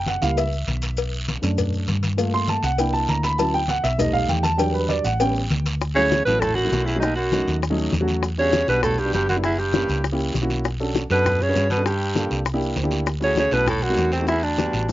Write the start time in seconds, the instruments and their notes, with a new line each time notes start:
Already playing: fingered electric bass F#1
0.06 grand piano F#5, cowbell, high conga, short guiro, maracas
0.21 fingered electric bass C#2, grand piano G3 A#3 E4 F5, high conga, short guiro, maracas
0.37 grand piano E5, cowbell, high conga, long guiro, maracas
0.52 high conga, maracas
0.68 fingered electric bass B1, cowbell, high conga, short guiro, maracas
0.82 cowbell, high conga, short guiro, maracas
0.97 cowbell, high conga, long guiro, maracas
1.13 high conga, maracas
1.28 cowbell, high conga, short guiro, maracas
1.42 fingered electric bass F#2, grand piano A3 C#4 D4, cowbell, short guiro, maracas
1.58 cowbell, high conga, low conga, long guiro, maracas
1.73 high conga, maracas
1.88 fingered electric bass G2, cowbell, high conga, short guiro, maracas
2.03 cowbell, high conga, short guiro, maracas
2.17 grand piano A3 A#3 F4, cowbell, high conga, long guiro, maracas
2.34 grand piano C6, high conga, maracas
2.48 grand piano A5, cowbell, high conga, short guiro, maracas
2.63 fingered electric bass C2, grand piano F#5, high conga, short guiro, maracas
2.78 grand piano A#3 D4 E4 G5, cowbell, high conga, long guiro, maracas
2.93 grand piano A5, high conga, maracas
3.08 fingered electric bass D2, grand piano A#5, cowbell, high conga, short guiro, maracas
3.23 grand piano B5, cowbell, high conga, short guiro, maracas
3.38 grand piano F#3 C#4 E4 A5, cowbell, high conga, long guiro, maracas
3.54 grand piano G5, high conga, maracas
3.68 grand piano F#5, cowbell, high conga, short guiro, maracas
3.84 fingered electric bass B1, grand piano E5, cowbell, short guiro, maracas
3.98 grand piano G3 A3 D#4 D#5, cowbell, high conga, low conga, long guiro, maracas
4.13 grand piano F5, high conga, low conga, maracas
4.29 fingered electric bass E2, grand piano G5, cowbell, high conga, short guiro, maracas
4.43 grand piano A5, cowbell, high conga, short guiro, maracas
4.58 grand piano F#3 G3 D4 G5, cowbell, high conga, long guiro, maracas
4.70 grand piano A#4
4.74 grand piano B4, high conga, maracas
4.89 grand piano D5, cowbell, high conga, short guiro, maracas
5.04 fingered electric bass A1, grand piano F#5, high conga, short guiro, maracas
5.20 grand piano G3 B3 C#4 G5, cowbell, high conga, long guiro, maracas
5.35 high conga, maracas
5.50 fingered electric bass D2, cowbell, high conga, short guiro, maracas
5.66 cowbell, high conga, short guiro, maracas
5.81 high bongo, high conga, long guiro, maracas
5.94 baritone saxophone C#3, grand piano F#3 A3 C#4 E4, alto saxophone C#5, high conga, maracas
6.11 high bongo, high conga, short guiro, maracas
6.25 fingered electric bass A1, baritone saxophone B2, grand piano F#3 A3 C#4 E4, alto saxophone B4, high bongo, high conga, short guiro, maracas
6.40 baritone saxophone A2, alto saxophone A4, high bongo, high conga, low conga, long guiro, maracas
6.55 baritone saxophone F#2, alto saxophone F#4, high bongo, high conga, maracas
6.65 grand piano F#3 A3 C#4 E4
6.72 fingered electric bass B1, high bongo, low bongo, short guiro, maracas
6.85 baritone saxophone E2, alto saxophone E4, high bongo, short guiro, maracas
6.95 grand piano F#3 A3 C#4 F#4
7.00 baritone saxophone D#2, alto saxophone D#4, high bongo, high conga, long guiro, maracas
7.16 baritone saxophone F#2, alto saxophone F#4, high conga, maracas
7.32 grand piano F#3 A3 C#4 D#4, high bongo, high conga, short guiro, maracas
7.48 fingered electric bass D#2, high bongo, high conga, short guiro, maracas
7.62 high bongo, high conga, long guiro, maracas
7.70 grand piano F#3 A3 C#4 D#4
7.77 high bongo, high conga, maracas
7.92 fingered electric bass E2, high bongo, low bongo, high conga, short guiro, maracas
8.01 grand piano F#3 A3 C#4 F#4
8.08 high bongo, short guiro, maracas
8.23 high bongo, high conga, long guiro, maracas
8.38 baritone saxophone C#3, grand piano G3 B3 D4 F#4, alto saxophone C#5, high conga, maracas
8.53 high bongo, high conga, short guiro, maracas
8.68 fingered electric bass B1, baritone saxophone B2, grand piano G3 B3 D4 F#4, alto saxophone B4, high bongo, high conga, short guiro, maracas
8.83 baritone saxophone A2, alto saxophone A4, high bongo, high conga, low conga, long guiro, maracas
8.98 baritone saxophone G2, alto saxophone G4, high bongo, maracas
9.05 grand piano G3 B3 D4 F#4
9.13 fingered electric bass F#1, baritone saxophone G2, alto saxophone G4, high bongo, low bongo, high conga, short guiro, maracas
9.28 baritone saxophone F#2, alto saxophone F#4, high bongo, high conga, short guiro, maracas
9.36 grand piano G3 B3 D4 E4
9.44 baritone saxophone E2, alto saxophone E4, high bongo, high conga, long guiro, maracas
9.58 baritone saxophone G2, alto saxophone G4, high conga, maracas
9.73 grand piano A#3 C#4 E4 G4, high bongo, high conga, short guiro, maracas
9.88 fingered electric bass C#2, high bongo, high conga, short guiro, maracas
10.04 high bongo, high conga, long guiro, maracas
10.12 grand piano A#3 C#4 E4 G4
10.20 high bongo, high conga, maracas
10.35 fingered electric bass B1, high bongo, low bongo, high conga, short guiro, maracas
10.42 grand piano A#3 C#4 E4 F#4
10.50 high bongo, short guiro, maracas
10.65 high bongo, long guiro, maracas
10.80 grand piano C#4 D4 F#4 A4, high conga, maracas
10.95 high bongo, high conga, short guiro, maracas
11.10 fingered electric bass F#2, baritone saxophone B2, grand piano C#4 D4 F#4 A4, alto saxophone B4, high bongo, high conga, short guiro, maracas
11.24 high bongo, high conga, low conga, long guiro, maracas
11.39 baritone saxophone C#3, alto saxophone C#5, high bongo, high conga, maracas
11.48 grand piano C#4 D4 F#4 B4
11.54 fingered electric bass G2, high bongo, low bongo, high conga, short guiro, maracas
11.70 baritone saxophone B2, alto saxophone B4, high bongo, high conga, short guiro, maracas
11.78 grand piano C#4 D4 F#4 A4
11.84 baritone saxophone G2, alto saxophone G4, high bongo, high conga, long guiro, maracas
12.01 maracas
12.15 grand piano A#3 D4 F4 A4, high bongo, high conga, short guiro, maracas
12.31 fingered electric bass C2, high bongo, high conga, short guiro, maracas
12.45 high bongo, high conga, long guiro, maracas
12.54 grand piano A#3 D4 E4 G4
12.61 high bongo, high conga, maracas
12.76 fingered electric bass D2, grand piano C5, high bongo, low bongo, high conga, short guiro, maracas
12.83 grand piano A#3 D4 E4 G4 A5
12.91 high bongo, short guiro, maracas
13.06 high bongo, long guiro, maracas
13.20 baritone saxophone C#3, grand piano A3 C#4 E4 F#4, alto saxophone C#5, maracas
13.36 baritone saxophone C#3, alto saxophone C#5, high bongo, high conga, short guiro, maracas
13.51 fingered electric bass B1, baritone saxophone B2, grand piano A3 C#4 E4 A4, alto saxophone B4, high bongo, high conga, short guiro, maracas
13.66 baritone saxophone A2, alto saxophone A4, high bongo, high conga, low conga, long guiro, maracas
13.82 baritone saxophone F#2, alto saxophone F#4, high bongo, high conga, maracas
13.90 grand piano A3 C4 D#4 F#4
13.97 fingered electric bass E2, high bongo, low bongo, short guiro, maracas
14.12 baritone saxophone C2, alto saxophone C4, high bongo, short guiro, maracas
14.20 grand piano A3 C4 D#4 F#4
14.27 baritone saxophone E2, alto saxophone E4, high bongo, high conga, long guiro, maracas
14.43 baritone saxophone D2, alto saxophone D4, high conga, maracas
14.58 grand piano G3 B3 D4 F#4, high bongo, high conga, short guiro, maracas
14.73 fingered electric bass A1, high bongo, high conga, short guiro, maracas
14.89 high bongo, long guiro